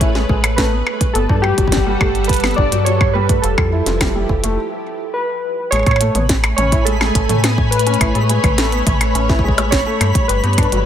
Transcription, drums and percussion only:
0.01 kick, closed hi-hat
0.15 snare
0.29 kick
0.44 closed hi-hat, percussion blips
0.58 kick, snare, closed hi-hat
0.87 percussion blips
1.01 kick, closed hi-hat
1.15 closed hi-hat
1.29 kick
1.44 percussion blips
1.58 kick, closed hi-hat
1.67 kick
1.72 snare, closed hi-hat
1.77 kick
2.01 kick, percussion blips
2.15 closed hi-hat
2.24 closed hi-hat
2.29 kick, closed hi-hat
2.33 closed hi-hat
2.36 closed hi-hat
2.40 snare, closed hi-hat
2.44 closed hi-hat, percussion blips
2.47 closed hi-hat
2.51 closed hi-hat
2.54 kick, closed hi-hat
2.72 closed hi-hat
2.86 closed hi-hat
3.01 kick, percussion blips
3.29 kick, closed hi-hat
3.44 closed hi-hat
3.58 kick, percussion blips
3.86 snare, closed hi-hat
4.01 kick, snare, closed hi-hat, percussion blips
4.29 kick
4.44 closed hi-hat
5.72 closed hi-hat, percussion blips
5.76 percussion blips
5.79 percussion blips
5.83 closed hi-hat, percussion blips
5.87 kick, percussion blips
5.91 percussion blips
5.96 percussion blips
6.01 closed hi-hat
6.15 closed hi-hat, mid tom
6.29 kick, snare, closed hi-hat
6.44 closed hi-hat, percussion blips
6.58 closed hi-hat, mid tom
6.72 kick, closed hi-hat
6.87 closed hi-hat
7.01 snare, percussion blips
7.15 kick, closed hi-hat
7.29 closed hi-hat, mid tom
7.44 snare, closed hi-hat, percussion blips
7.58 kick
7.72 closed hi-hat
7.79 closed hi-hat
7.87 closed hi-hat
7.94 closed hi-hat
8.01 kick, closed hi-hat, percussion blips
8.15 closed hi-hat
8.29 closed hi-hat
8.44 kick, closed hi-hat, mid tom, percussion blips
8.58 snare, closed hi-hat
8.72 closed hi-hat
8.87 kick, closed hi-hat, mid tom
9.01 closed hi-hat, percussion blips
9.15 closed hi-hat
9.29 kick, snare
9.39 kick
9.48 kick
9.58 closed hi-hat, percussion blips
9.72 kick, snare, closed hi-hat
10.01 closed hi-hat, percussion blips
10.15 kick, closed hi-hat
10.29 closed hi-hat
10.44 closed hi-hat
10.53 closed hi-hat
10.58 kick, closed hi-hat, percussion blips
10.72 closed hi-hat, mid tom
10.75 mid tom
10.77 mid tom
10.80 mid tom
10.82 mid tom

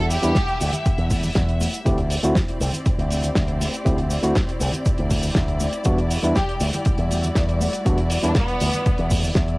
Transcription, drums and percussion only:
0.10 open hi-hat, cabasa, shaker
0.23 closed hi-hat, cabasa, shaker
0.35 kick, snare, closed hi-hat, cabasa, shaker
0.48 closed hi-hat
0.60 open hi-hat, high conga, cabasa, shaker
0.73 closed hi-hat, low conga, cabasa, shaker
0.85 kick, closed hi-hat, cabasa, shaker
0.98 closed hi-hat
1.10 kick, open hi-hat, high conga, cabasa, shaker
1.23 open hi-hat, low conga, cabasa, shaker
1.35 kick, snare, closed hi-hat, cabasa, shaker
1.49 closed hi-hat
1.60 open hi-hat, high conga, cabasa, shaker
1.73 closed hi-hat, cabasa, shaker
1.86 kick, closed hi-hat, cabasa, shaker
1.98 closed hi-hat
2.10 open hi-hat, cabasa, shaker
2.23 closed hi-hat, cabasa, shaker
2.35 kick, snare, closed hi-hat, cabasa, shaker
2.48 closed hi-hat
2.60 open hi-hat, high conga, cabasa, shaker
2.73 closed hi-hat, low conga, cabasa, shaker
2.85 kick, closed hi-hat, cabasa, shaker
2.99 closed hi-hat
3.10 open hi-hat, high conga, cabasa, shaker
3.23 closed hi-hat, low conga, cabasa, shaker
3.35 kick, snare, closed hi-hat, cabasa, shaker
3.48 closed hi-hat
3.61 open hi-hat, high conga, cabasa, shaker
3.73 closed hi-hat, cabasa, shaker
3.86 kick, closed hi-hat, cabasa, shaker
3.98 closed hi-hat
4.10 open hi-hat, high conga, cabasa, shaker
4.23 closed hi-hat, cabasa, shaker
4.35 kick, snare, closed hi-hat, cabasa, shaker
4.49 closed hi-hat
4.60 open hi-hat, high conga, cabasa, shaker
4.72 closed hi-hat, low conga, cabasa, shaker
4.85 kick, closed hi-hat, cabasa, shaker
4.98 closed hi-hat
5.10 kick, open hi-hat, high conga, cabasa, shaker
5.23 open hi-hat, low conga, cabasa, shaker
5.35 kick, snare, cabasa, shaker
5.48 closed hi-hat
5.60 open hi-hat, high conga, cabasa, shaker
5.73 closed hi-hat, cabasa, shaker
5.84 kick, closed hi-hat, cabasa, shaker
5.98 closed hi-hat
6.11 open hi-hat, cabasa, shaker
6.23 closed hi-hat, cabasa, shaker
6.36 kick, snare, closed hi-hat, cabasa, shaker
6.49 closed hi-hat
6.60 open hi-hat, high conga, cabasa, shaker
6.73 closed hi-hat, low conga, cabasa, shaker
6.85 kick, closed hi-hat, cabasa, shaker
6.98 closed hi-hat
7.11 open hi-hat, high conga, cabasa, shaker
7.23 closed hi-hat, low conga, cabasa, shaker
7.35 kick, snare, closed hi-hat, cabasa, shaker
7.49 closed hi-hat
7.60 open hi-hat, high conga, cabasa, shaker
7.73 closed hi-hat, cabasa, shaker
7.86 kick, closed hi-hat, cabasa, shaker
7.98 closed hi-hat
8.10 open hi-hat, cabasa, shaker
8.23 closed hi-hat, cabasa, shaker
8.35 kick, snare, closed hi-hat, cabasa, shaker
8.48 closed hi-hat
8.60 open hi-hat, high conga, cabasa, shaker
8.73 closed hi-hat, low conga, cabasa, shaker
8.86 kick, closed hi-hat, cabasa, shaker
8.98 closed hi-hat
9.10 kick, open hi-hat, high conga, cabasa, shaker
9.23 open hi-hat, low conga, cabasa, shaker
9.35 kick, snare, closed hi-hat, cabasa, shaker
9.48 closed hi-hat

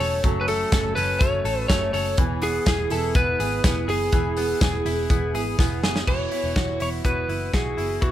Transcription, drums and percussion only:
0.00 open hi-hat, tambourine
0.24 kick, closed hi-hat, tambourine
0.48 open hi-hat, tambourine
0.72 kick, snare, closed hi-hat, tambourine
0.96 open hi-hat, tambourine
1.20 kick, closed hi-hat, tambourine
1.45 open hi-hat, tambourine
1.70 kick, snare, closed hi-hat, tambourine
1.94 open hi-hat
2.18 kick, closed hi-hat
2.42 open hi-hat, tambourine
2.66 kick, snare, closed hi-hat, tambourine
2.90 open hi-hat, tambourine
3.15 kick, closed hi-hat, tambourine
3.40 open hi-hat, tambourine
3.64 kick, snare, closed hi-hat, tambourine
3.89 open hi-hat
4.12 kick, closed hi-hat, tambourine
4.37 open hi-hat, tambourine
4.61 kick, snare, closed hi-hat, tambourine
4.86 open hi-hat, tambourine
5.10 kick, closed hi-hat, tambourine
5.35 open hi-hat, tambourine
5.59 kick, snare, tambourine
5.83 snare, tambourine
5.96 snare
6.07 kick, crash
6.31 open hi-hat
6.56 kick, snare, closed hi-hat
6.80 open hi-hat
7.05 kick, closed hi-hat
7.29 open hi-hat
7.54 kick, snare, closed hi-hat
7.78 open hi-hat
8.02 kick, closed hi-hat

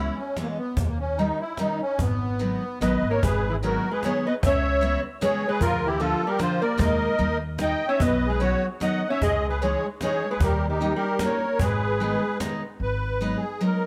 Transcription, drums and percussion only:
0.37 cajon slap
0.77 cajon bass
1.17 cajon slap
1.57 cajon slap
1.79 cajon slap
1.99 cajon bass
2.40 cajon slap
2.82 cajon slap
3.23 cajon bass
3.64 cajon slap
4.03 cajon slap
4.43 cajon bass
4.84 cajon slap
5.22 cajon slap
5.61 cajon bass
6.00 cajon slap
6.39 cajon slap
6.79 cajon bass
7.19 cajon slap
7.59 cajon slap
8.00 cajon bass
8.41 cajon slap
8.81 cajon slap
9.22 cajon bass
9.62 cajon slap
10.01 cajon slap
10.41 cajon bass
10.80 cajon slap
11.19 cajon slap
11.59 cajon bass
12.00 cajon slap
12.40 cajon slap

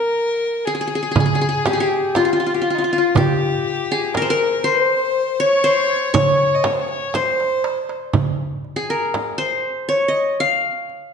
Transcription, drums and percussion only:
0.17 darbuka ka
1.16 frame drum, darbuka dum
1.66 darbuka tek, frame drum
1.92 darbuka ka
2.15 darbuka tek, frame drum
3.15 darbuka dum, frame drum
3.65 darbuka ka
4.14 darbuka tek, frame drum
4.66 darbuka ka
5.15 darbuka ka
5.91 darbuka ka
6.14 frame drum, darbuka dum
6.64 darbuka tek, frame drum
6.91 darbuka ka
7.14 darbuka tek, frame drum
7.40 darbuka ka
7.64 darbuka tek
7.89 darbuka ka
8.13 frame drum, darbuka dum
8.64 darbuka ka
9.14 darbuka tek, frame drum
10.89 darbuka ka

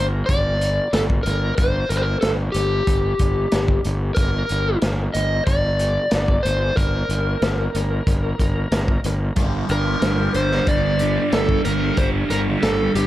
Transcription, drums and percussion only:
0.29 kick, closed hi-hat
0.61 closed hi-hat
0.93 snare, closed hi-hat
1.10 kick
1.26 closed hi-hat
1.58 kick, closed hi-hat
1.90 closed hi-hat
2.22 snare, closed hi-hat
2.54 closed hi-hat
2.87 kick, closed hi-hat
3.19 kick, closed hi-hat
3.52 snare, closed hi-hat
3.68 kick
3.85 closed hi-hat
4.16 kick, closed hi-hat
4.49 closed hi-hat
4.82 snare, closed hi-hat
5.15 closed hi-hat
5.47 kick, closed hi-hat
5.79 closed hi-hat
6.11 snare, closed hi-hat
6.28 kick
6.45 closed hi-hat
6.77 kick, closed hi-hat
7.10 closed hi-hat
7.42 snare, closed hi-hat
7.75 closed hi-hat
8.07 kick, closed hi-hat
8.39 kick, closed hi-hat
8.72 snare, closed hi-hat
8.88 kick
9.04 closed hi-hat
9.36 kick, closed hi-hat
9.69 closed hi-hat
10.02 snare, closed hi-hat
10.34 closed hi-hat
10.52 snare
10.67 kick, closed hi-hat
10.99 closed hi-hat
11.32 snare, closed hi-hat
11.49 kick
11.65 closed hi-hat
11.97 kick, closed hi-hat
12.30 closed hi-hat
12.63 snare, closed hi-hat
12.95 closed hi-hat

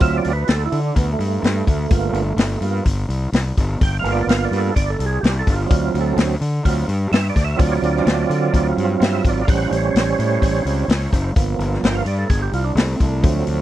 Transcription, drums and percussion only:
0.00 kick, open hi-hat
0.24 open hi-hat
0.47 snare, open hi-hat
0.72 open hi-hat
0.96 kick, open hi-hat
1.20 open hi-hat
1.44 snare, open hi-hat
1.67 kick, open hi-hat
1.90 kick, open hi-hat
2.14 open hi-hat
2.38 snare, open hi-hat
2.62 open hi-hat
2.85 kick, open hi-hat
3.10 open hi-hat
3.33 snare, open hi-hat
3.57 kick, open hi-hat
3.81 kick, open hi-hat
4.05 open hi-hat
4.29 snare, open hi-hat
4.53 open hi-hat
4.76 kick, open hi-hat
5.00 open hi-hat
5.24 snare, open hi-hat
5.47 kick, open hi-hat
5.70 kick, open hi-hat
5.95 open hi-hat
6.17 snare, open hi-hat
6.41 open hi-hat
6.65 kick, open hi-hat
6.89 open hi-hat
7.12 snare, open hi-hat
7.36 kick, snare, open hi-hat
7.59 kick, open hi-hat
7.83 open hi-hat
7.96 snare
8.07 snare, open hi-hat
8.31 open hi-hat
8.54 kick, open hi-hat
8.78 open hi-hat
9.01 snare, open hi-hat
9.25 kick, open hi-hat
9.48 kick, open hi-hat
9.72 open hi-hat
9.96 snare, open hi-hat
10.20 open hi-hat
10.42 kick, open hi-hat
10.66 open hi-hat
10.89 snare, open hi-hat
11.13 kick, open hi-hat
11.36 kick, open hi-hat
11.60 open hi-hat
11.74 snare
11.84 snare, open hi-hat
12.06 open hi-hat
12.30 kick, open hi-hat
12.53 open hi-hat
12.77 snare, open hi-hat
13.00 kick, open hi-hat
13.24 kick, open hi-hat
13.47 open hi-hat

